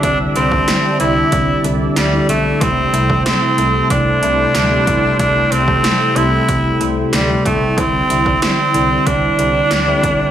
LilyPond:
<<
  \new Staff \with { instrumentName = "Analog synth pad" } { \time 4/4 \key c \major \tempo 4 = 93 << { <d' e''>1 | <e' g''>1~ | <e' g''>1~ | <e' g''>1 | } \\ { <g' d''>1 | <a' c''>1~ | <a' c''>1 | d''1 | } >> }
  \new Staff \with { instrumentName = "Tenor saxophone" } { \time 4/4 \key c \major d'8 c'4 e'4 r8 g8 a8 | c'4 c'4 d'2 | d'8 c'4 e'4 r8 g8 a8 | c'4 c'4 d'2 | }
  \new Staff \with { instrumentName = "Tine electric piano" } { \clef bass \time 4/4 \key c \major <d g c' e'>16 r16 <d g c' e'>8. r16 <d g c' e'>8. r16 <d g c' d'>8 r16 <d g c' e'>8 r16 | <c g a e'>16 r16 <c g a e'>8. r16 <c g a e'>8. r16 <c g a e'>8 r16 <c g a e'>8 r16 | <c g a e'>16 r16 <c g a c'>8. r16 <c g a e'>8. r16 <c g a e'>8 r16 <c g a e'>8 r16 | <d g c' e'>16 r16 <d g c' e'>8. r16 <d g c' e'>8. r16 <d g c' e'>8 r16 <d g c' e'>8 r16 | }
  \new Staff \with { instrumentName = "FM bass" } { \clef bass \time 4/4 \key c \major c,8 c,8. r16 c,8 c,8 c,8 d,8 b,,8 | c,8 c,8. r16 c,8 c,8 c,8 d,8 b,,8 | c,8 c,8. r16 c,8 c,8 c,8 d,8 b,,8 | c,8 c,8. r16 c,8 c,8 c,8 d,8 b,,8 | }
  \new DrumStaff \with { instrumentName = "Drums" } \drummode { \time 4/4 <hh bd>8 hh16 bd16 <hh sn>8 hh8 <hh bd>8 hh8 <hh sn>8 hh8 | <hh bd>8 hh16 bd16 <hh sn>8 hh8 <hh bd>8 hh8 <hh sn>8 <hh bd>8 | <hh bd>8 hh16 bd16 <hh sn>8 hh8 <hh bd>8 hh8 <hh sn>8 <hh bd>8 | <hh bd>8 hh16 bd16 <hh sn>8 hh8 <hh bd>8 hh8 <hh sn>8 <hh bd>8 | }
>>